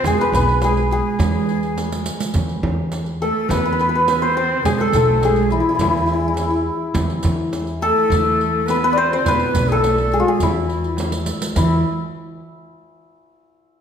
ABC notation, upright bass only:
X:1
M:4/4
L:1/8
Q:1/4=104
K:none
V:1 name="Upright bass" clef=bass
B,,, B,,,3 E,,4 | E,, E,,3 E,,4 | B,,, B,,,3 E,,4 | E,, E,,3 E,,4 |
B,,, B,,,3 E,,4 | E,, z6 z |]